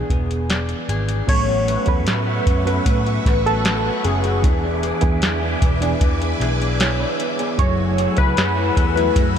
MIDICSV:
0, 0, Header, 1, 7, 480
1, 0, Start_track
1, 0, Key_signature, 3, "major"
1, 0, Tempo, 788436
1, 780, Time_signature, 4, 2, 24, 8
1, 5714, End_track
2, 0, Start_track
2, 0, Title_t, "String machine"
2, 0, Program_c, 0, 50
2, 774, Note_on_c, 0, 71, 76
2, 774, Note_on_c, 0, 85, 89
2, 776, Note_on_c, 0, 76, 71
2, 777, Note_on_c, 0, 78, 68
2, 2677, Note_off_c, 0, 71, 0
2, 2677, Note_off_c, 0, 85, 0
2, 2678, Note_off_c, 0, 76, 0
2, 2679, Note_off_c, 0, 78, 0
2, 2701, Note_on_c, 0, 71, 76
2, 2702, Note_on_c, 0, 76, 69
2, 2702, Note_on_c, 0, 80, 73
2, 2702, Note_on_c, 0, 86, 87
2, 4600, Note_off_c, 0, 71, 0
2, 4601, Note_off_c, 0, 76, 0
2, 4601, Note_off_c, 0, 80, 0
2, 4601, Note_off_c, 0, 86, 0
2, 4618, Note_on_c, 0, 78, 69
2, 4622, Note_on_c, 0, 80, 74
2, 4622, Note_on_c, 0, 88, 88
2, 4623, Note_on_c, 0, 57, 81
2, 5714, Note_off_c, 0, 57, 0
2, 5714, Note_off_c, 0, 78, 0
2, 5714, Note_off_c, 0, 80, 0
2, 5714, Note_off_c, 0, 88, 0
2, 5714, End_track
3, 0, Start_track
3, 0, Title_t, "Synth keys"
3, 0, Program_c, 1, 88
3, 0, Note_on_c, 1, 68, 75
3, 276, Note_off_c, 1, 68, 0
3, 785, Note_on_c, 1, 73, 97
3, 1147, Note_on_c, 1, 71, 100
3, 1153, Note_off_c, 1, 73, 0
3, 1599, Note_off_c, 1, 71, 0
3, 1624, Note_on_c, 1, 71, 91
3, 2108, Note_on_c, 1, 69, 89
3, 2116, Note_off_c, 1, 71, 0
3, 2463, Note_on_c, 1, 68, 74
3, 2474, Note_off_c, 1, 69, 0
3, 3396, Note_off_c, 1, 68, 0
3, 4621, Note_on_c, 1, 73, 100
3, 4980, Note_on_c, 1, 71, 95
3, 4990, Note_off_c, 1, 73, 0
3, 5446, Note_off_c, 1, 71, 0
3, 5454, Note_on_c, 1, 71, 86
3, 5714, Note_off_c, 1, 71, 0
3, 5714, End_track
4, 0, Start_track
4, 0, Title_t, "Clean electric guitar"
4, 0, Program_c, 2, 27
4, 0, Note_on_c, 2, 52, 68
4, 0, Note_on_c, 2, 59, 55
4, 0, Note_on_c, 2, 62, 53
4, 0, Note_on_c, 2, 68, 66
4, 61, Note_off_c, 2, 59, 0
4, 63, Note_on_c, 2, 59, 55
4, 297, Note_off_c, 2, 62, 0
4, 304, Note_on_c, 2, 62, 54
4, 537, Note_off_c, 2, 68, 0
4, 545, Note_on_c, 2, 68, 60
4, 782, Note_off_c, 2, 52, 0
4, 784, Note_on_c, 2, 57, 84
4, 830, Note_off_c, 2, 62, 0
4, 830, Note_off_c, 2, 68, 0
4, 902, Note_on_c, 2, 66, 55
4, 1024, Note_on_c, 2, 71, 64
4, 1138, Note_off_c, 2, 66, 0
4, 1145, Note_on_c, 2, 66, 60
4, 1262, Note_off_c, 2, 71, 0
4, 1264, Note_on_c, 2, 71, 66
4, 1379, Note_off_c, 2, 66, 0
4, 1386, Note_on_c, 2, 66, 60
4, 1505, Note_off_c, 2, 59, 0
4, 1507, Note_on_c, 2, 61, 58
4, 1616, Note_off_c, 2, 66, 0
4, 1624, Note_on_c, 2, 66, 60
4, 1737, Note_off_c, 2, 57, 0
4, 1744, Note_on_c, 2, 57, 81
4, 1857, Note_off_c, 2, 66, 0
4, 1864, Note_on_c, 2, 66, 54
4, 1984, Note_off_c, 2, 71, 0
4, 1987, Note_on_c, 2, 71, 65
4, 2100, Note_off_c, 2, 66, 0
4, 2108, Note_on_c, 2, 66, 62
4, 2227, Note_off_c, 2, 71, 0
4, 2230, Note_on_c, 2, 71, 66
4, 2343, Note_off_c, 2, 66, 0
4, 2350, Note_on_c, 2, 66, 59
4, 2460, Note_off_c, 2, 61, 0
4, 2468, Note_on_c, 2, 61, 60
4, 2577, Note_off_c, 2, 66, 0
4, 2584, Note_on_c, 2, 66, 63
4, 2701, Note_off_c, 2, 57, 0
4, 2704, Note_on_c, 2, 52, 85
4, 2750, Note_off_c, 2, 66, 0
4, 2751, Note_off_c, 2, 61, 0
4, 2823, Note_on_c, 2, 62, 57
4, 2940, Note_off_c, 2, 71, 0
4, 2942, Note_on_c, 2, 68, 66
4, 3059, Note_off_c, 2, 62, 0
4, 3066, Note_on_c, 2, 62, 58
4, 3183, Note_off_c, 2, 68, 0
4, 3186, Note_on_c, 2, 68, 68
4, 3298, Note_off_c, 2, 62, 0
4, 3305, Note_on_c, 2, 62, 59
4, 3425, Note_on_c, 2, 59, 59
4, 3536, Note_off_c, 2, 62, 0
4, 3544, Note_on_c, 2, 62, 61
4, 3661, Note_off_c, 2, 52, 0
4, 3663, Note_on_c, 2, 52, 83
4, 3777, Note_off_c, 2, 62, 0
4, 3785, Note_on_c, 2, 62, 60
4, 3905, Note_off_c, 2, 68, 0
4, 3908, Note_on_c, 2, 68, 66
4, 4022, Note_off_c, 2, 62, 0
4, 4030, Note_on_c, 2, 62, 59
4, 4146, Note_off_c, 2, 68, 0
4, 4148, Note_on_c, 2, 68, 70
4, 4261, Note_off_c, 2, 62, 0
4, 4269, Note_on_c, 2, 62, 55
4, 4382, Note_off_c, 2, 59, 0
4, 4390, Note_on_c, 2, 59, 60
4, 4499, Note_off_c, 2, 62, 0
4, 4507, Note_on_c, 2, 62, 60
4, 4625, Note_off_c, 2, 52, 0
4, 4627, Note_on_c, 2, 54, 85
4, 4671, Note_off_c, 2, 62, 0
4, 4672, Note_off_c, 2, 59, 0
4, 4748, Note_on_c, 2, 64, 56
4, 4866, Note_off_c, 2, 68, 0
4, 4868, Note_on_c, 2, 68, 69
4, 4977, Note_off_c, 2, 64, 0
4, 4984, Note_on_c, 2, 64, 61
4, 5097, Note_off_c, 2, 68, 0
4, 5104, Note_on_c, 2, 68, 67
4, 5219, Note_off_c, 2, 64, 0
4, 5226, Note_on_c, 2, 64, 64
4, 5348, Note_on_c, 2, 57, 59
4, 5459, Note_off_c, 2, 64, 0
4, 5467, Note_on_c, 2, 64, 64
4, 5582, Note_off_c, 2, 54, 0
4, 5584, Note_on_c, 2, 54, 88
4, 5700, Note_off_c, 2, 64, 0
4, 5714, Note_off_c, 2, 54, 0
4, 5714, Note_off_c, 2, 57, 0
4, 5714, Note_off_c, 2, 68, 0
4, 5714, End_track
5, 0, Start_track
5, 0, Title_t, "Reed electric piano"
5, 0, Program_c, 3, 4
5, 0, Control_c, 3, 64, 127
5, 0, Note_on_c, 3, 52, 77
5, 0, Note_on_c, 3, 59, 71
5, 0, Note_on_c, 3, 62, 65
5, 0, Note_on_c, 3, 68, 82
5, 579, Note_off_c, 3, 52, 0
5, 581, Note_off_c, 3, 59, 0
5, 585, Note_off_c, 3, 62, 0
5, 587, Note_off_c, 3, 68, 0
5, 772, Note_on_c, 3, 54, 67
5, 778, Note_on_c, 3, 59, 60
5, 784, Note_on_c, 3, 61, 61
5, 787, Note_on_c, 3, 69, 76
5, 788, Control_c, 3, 64, 0
5, 882, Control_c, 3, 64, 127
5, 1108, Note_off_c, 3, 54, 0
5, 1111, Note_off_c, 3, 59, 0
5, 1114, Note_off_c, 3, 61, 0
5, 1115, Note_off_c, 3, 69, 0
5, 1133, Note_on_c, 3, 54, 67
5, 1139, Note_on_c, 3, 59, 63
5, 1144, Note_on_c, 3, 61, 65
5, 1150, Note_on_c, 3, 69, 77
5, 1579, Note_off_c, 3, 54, 0
5, 1582, Note_off_c, 3, 59, 0
5, 1584, Note_off_c, 3, 61, 0
5, 1587, Note_off_c, 3, 69, 0
5, 1612, Note_on_c, 3, 54, 69
5, 1616, Note_on_c, 3, 59, 66
5, 1623, Note_on_c, 3, 61, 67
5, 1627, Note_on_c, 3, 69, 74
5, 2501, Note_off_c, 3, 54, 0
5, 2503, Note_off_c, 3, 59, 0
5, 2506, Note_off_c, 3, 61, 0
5, 2508, Note_off_c, 3, 69, 0
5, 2693, Note_on_c, 3, 52, 68
5, 2698, Note_on_c, 3, 59, 64
5, 2704, Note_on_c, 3, 62, 61
5, 2708, Control_c, 3, 64, 0
5, 2708, Note_on_c, 3, 68, 79
5, 2827, Control_c, 3, 64, 127
5, 3028, Note_off_c, 3, 52, 0
5, 3030, Note_off_c, 3, 59, 0
5, 3033, Note_off_c, 3, 62, 0
5, 3035, Note_off_c, 3, 68, 0
5, 3052, Note_on_c, 3, 52, 84
5, 3056, Note_on_c, 3, 59, 74
5, 3061, Note_on_c, 3, 62, 78
5, 3066, Note_on_c, 3, 68, 92
5, 3498, Note_off_c, 3, 52, 0
5, 3500, Note_off_c, 3, 59, 0
5, 3502, Note_off_c, 3, 62, 0
5, 3505, Note_off_c, 3, 68, 0
5, 3535, Note_on_c, 3, 52, 80
5, 3539, Note_on_c, 3, 59, 75
5, 3545, Note_on_c, 3, 62, 81
5, 3549, Note_on_c, 3, 68, 90
5, 4139, Note_off_c, 3, 59, 0
5, 4142, Note_off_c, 3, 62, 0
5, 4143, Note_on_c, 3, 73, 63
5, 4144, Note_off_c, 3, 68, 0
5, 4146, Note_on_c, 3, 64, 51
5, 4255, Note_off_c, 3, 73, 0
5, 4257, Note_off_c, 3, 64, 0
5, 4261, Note_on_c, 3, 71, 72
5, 4266, Note_on_c, 3, 62, 57
5, 4422, Note_off_c, 3, 52, 0
5, 4488, Note_off_c, 3, 71, 0
5, 4490, Note_off_c, 3, 62, 0
5, 4503, Note_on_c, 3, 68, 64
5, 4507, Note_on_c, 3, 59, 55
5, 4612, Note_on_c, 3, 54, 68
5, 4617, Note_on_c, 3, 57, 67
5, 4619, Note_off_c, 3, 68, 0
5, 4623, Note_on_c, 3, 64, 63
5, 4626, Note_on_c, 3, 68, 77
5, 4627, Control_c, 3, 64, 0
5, 4731, Note_off_c, 3, 59, 0
5, 4734, Control_c, 3, 64, 127
5, 4947, Note_off_c, 3, 54, 0
5, 4950, Note_off_c, 3, 57, 0
5, 4952, Note_off_c, 3, 64, 0
5, 4954, Note_off_c, 3, 68, 0
5, 4973, Note_on_c, 3, 54, 71
5, 4978, Note_on_c, 3, 57, 67
5, 4983, Note_on_c, 3, 64, 66
5, 4988, Note_on_c, 3, 68, 79
5, 5418, Note_off_c, 3, 54, 0
5, 5421, Note_off_c, 3, 57, 0
5, 5423, Note_off_c, 3, 64, 0
5, 5426, Note_off_c, 3, 68, 0
5, 5450, Note_on_c, 3, 54, 73
5, 5456, Note_on_c, 3, 57, 70
5, 5461, Note_on_c, 3, 64, 66
5, 5466, Note_on_c, 3, 68, 78
5, 5714, Note_off_c, 3, 54, 0
5, 5714, Note_off_c, 3, 57, 0
5, 5714, Note_off_c, 3, 64, 0
5, 5714, Note_off_c, 3, 68, 0
5, 5714, End_track
6, 0, Start_track
6, 0, Title_t, "Picked electric bass"
6, 0, Program_c, 4, 34
6, 59, Note_on_c, 4, 28, 79
6, 443, Note_off_c, 4, 28, 0
6, 541, Note_on_c, 4, 32, 80
6, 732, Note_off_c, 4, 32, 0
6, 781, Note_on_c, 4, 33, 97
6, 1069, Note_off_c, 4, 33, 0
6, 1142, Note_on_c, 4, 40, 78
6, 1262, Note_off_c, 4, 40, 0
6, 1262, Note_on_c, 4, 45, 103
6, 1453, Note_off_c, 4, 45, 0
6, 1503, Note_on_c, 4, 42, 90
6, 1693, Note_off_c, 4, 42, 0
6, 1740, Note_on_c, 4, 45, 103
6, 1932, Note_off_c, 4, 45, 0
6, 1983, Note_on_c, 4, 33, 86
6, 2365, Note_off_c, 4, 33, 0
6, 2465, Note_on_c, 4, 30, 83
6, 2702, Note_off_c, 4, 30, 0
6, 2702, Note_on_c, 4, 28, 100
6, 2989, Note_off_c, 4, 28, 0
6, 3061, Note_on_c, 4, 40, 83
6, 3156, Note_off_c, 4, 40, 0
6, 3181, Note_on_c, 4, 40, 92
6, 3372, Note_off_c, 4, 40, 0
6, 3421, Note_on_c, 4, 28, 87
6, 3612, Note_off_c, 4, 28, 0
6, 3657, Note_on_c, 4, 40, 99
6, 3850, Note_off_c, 4, 40, 0
6, 3898, Note_on_c, 4, 35, 89
6, 4282, Note_off_c, 4, 35, 0
6, 4619, Note_on_c, 4, 30, 106
6, 4907, Note_off_c, 4, 30, 0
6, 4980, Note_on_c, 4, 37, 87
6, 5076, Note_off_c, 4, 37, 0
6, 5099, Note_on_c, 4, 42, 103
6, 5290, Note_off_c, 4, 42, 0
6, 5339, Note_on_c, 4, 40, 87
6, 5531, Note_off_c, 4, 40, 0
6, 5577, Note_on_c, 4, 42, 104
6, 5714, Note_off_c, 4, 42, 0
6, 5714, End_track
7, 0, Start_track
7, 0, Title_t, "Drums"
7, 60, Note_on_c, 9, 36, 81
7, 63, Note_on_c, 9, 42, 60
7, 120, Note_off_c, 9, 36, 0
7, 124, Note_off_c, 9, 42, 0
7, 187, Note_on_c, 9, 42, 38
7, 248, Note_off_c, 9, 42, 0
7, 302, Note_on_c, 9, 42, 74
7, 306, Note_on_c, 9, 38, 93
7, 363, Note_off_c, 9, 42, 0
7, 367, Note_off_c, 9, 38, 0
7, 419, Note_on_c, 9, 42, 33
7, 479, Note_off_c, 9, 42, 0
7, 544, Note_on_c, 9, 42, 75
7, 604, Note_off_c, 9, 42, 0
7, 661, Note_on_c, 9, 42, 49
7, 722, Note_off_c, 9, 42, 0
7, 781, Note_on_c, 9, 36, 122
7, 783, Note_on_c, 9, 49, 95
7, 784, Note_on_c, 9, 42, 78
7, 842, Note_off_c, 9, 36, 0
7, 844, Note_off_c, 9, 49, 0
7, 845, Note_off_c, 9, 42, 0
7, 1024, Note_on_c, 9, 42, 69
7, 1085, Note_off_c, 9, 42, 0
7, 1131, Note_on_c, 9, 42, 49
7, 1141, Note_on_c, 9, 36, 91
7, 1192, Note_off_c, 9, 42, 0
7, 1202, Note_off_c, 9, 36, 0
7, 1258, Note_on_c, 9, 42, 91
7, 1264, Note_on_c, 9, 38, 112
7, 1319, Note_off_c, 9, 42, 0
7, 1325, Note_off_c, 9, 38, 0
7, 1501, Note_on_c, 9, 36, 89
7, 1503, Note_on_c, 9, 42, 79
7, 1562, Note_off_c, 9, 36, 0
7, 1564, Note_off_c, 9, 42, 0
7, 1626, Note_on_c, 9, 42, 56
7, 1687, Note_off_c, 9, 42, 0
7, 1740, Note_on_c, 9, 36, 90
7, 1742, Note_on_c, 9, 42, 97
7, 1801, Note_off_c, 9, 36, 0
7, 1802, Note_off_c, 9, 42, 0
7, 1866, Note_on_c, 9, 42, 35
7, 1927, Note_off_c, 9, 42, 0
7, 1982, Note_on_c, 9, 36, 90
7, 1987, Note_on_c, 9, 42, 62
7, 1990, Note_on_c, 9, 38, 33
7, 2043, Note_off_c, 9, 36, 0
7, 2047, Note_off_c, 9, 42, 0
7, 2051, Note_off_c, 9, 38, 0
7, 2111, Note_on_c, 9, 42, 42
7, 2171, Note_off_c, 9, 42, 0
7, 2222, Note_on_c, 9, 42, 80
7, 2226, Note_on_c, 9, 38, 101
7, 2283, Note_off_c, 9, 42, 0
7, 2286, Note_off_c, 9, 38, 0
7, 2462, Note_on_c, 9, 42, 84
7, 2523, Note_off_c, 9, 42, 0
7, 2580, Note_on_c, 9, 42, 51
7, 2641, Note_off_c, 9, 42, 0
7, 2701, Note_on_c, 9, 36, 118
7, 2703, Note_on_c, 9, 42, 79
7, 2762, Note_off_c, 9, 36, 0
7, 2764, Note_off_c, 9, 42, 0
7, 2941, Note_on_c, 9, 42, 67
7, 3002, Note_off_c, 9, 42, 0
7, 3051, Note_on_c, 9, 42, 54
7, 3061, Note_on_c, 9, 36, 93
7, 3112, Note_off_c, 9, 42, 0
7, 3122, Note_off_c, 9, 36, 0
7, 3177, Note_on_c, 9, 42, 87
7, 3184, Note_on_c, 9, 38, 107
7, 3238, Note_off_c, 9, 42, 0
7, 3244, Note_off_c, 9, 38, 0
7, 3420, Note_on_c, 9, 36, 89
7, 3421, Note_on_c, 9, 42, 79
7, 3481, Note_off_c, 9, 36, 0
7, 3482, Note_off_c, 9, 42, 0
7, 3542, Note_on_c, 9, 42, 54
7, 3603, Note_off_c, 9, 42, 0
7, 3658, Note_on_c, 9, 36, 92
7, 3659, Note_on_c, 9, 42, 97
7, 3719, Note_off_c, 9, 36, 0
7, 3720, Note_off_c, 9, 42, 0
7, 3784, Note_on_c, 9, 42, 35
7, 3845, Note_off_c, 9, 42, 0
7, 3904, Note_on_c, 9, 42, 66
7, 3908, Note_on_c, 9, 38, 32
7, 3965, Note_off_c, 9, 42, 0
7, 3969, Note_off_c, 9, 38, 0
7, 4028, Note_on_c, 9, 42, 43
7, 4089, Note_off_c, 9, 42, 0
7, 4140, Note_on_c, 9, 42, 80
7, 4144, Note_on_c, 9, 38, 103
7, 4201, Note_off_c, 9, 42, 0
7, 4204, Note_off_c, 9, 38, 0
7, 4382, Note_on_c, 9, 42, 80
7, 4443, Note_off_c, 9, 42, 0
7, 4500, Note_on_c, 9, 42, 55
7, 4560, Note_off_c, 9, 42, 0
7, 4619, Note_on_c, 9, 36, 118
7, 4620, Note_on_c, 9, 42, 78
7, 4680, Note_off_c, 9, 36, 0
7, 4681, Note_off_c, 9, 42, 0
7, 4860, Note_on_c, 9, 42, 66
7, 4921, Note_off_c, 9, 42, 0
7, 4971, Note_on_c, 9, 42, 49
7, 4979, Note_on_c, 9, 36, 90
7, 5032, Note_off_c, 9, 42, 0
7, 5040, Note_off_c, 9, 36, 0
7, 5097, Note_on_c, 9, 42, 93
7, 5103, Note_on_c, 9, 38, 112
7, 5158, Note_off_c, 9, 42, 0
7, 5164, Note_off_c, 9, 38, 0
7, 5338, Note_on_c, 9, 36, 96
7, 5341, Note_on_c, 9, 42, 76
7, 5399, Note_off_c, 9, 36, 0
7, 5401, Note_off_c, 9, 42, 0
7, 5463, Note_on_c, 9, 42, 57
7, 5524, Note_off_c, 9, 42, 0
7, 5576, Note_on_c, 9, 36, 93
7, 5577, Note_on_c, 9, 42, 95
7, 5637, Note_off_c, 9, 36, 0
7, 5638, Note_off_c, 9, 42, 0
7, 5714, End_track
0, 0, End_of_file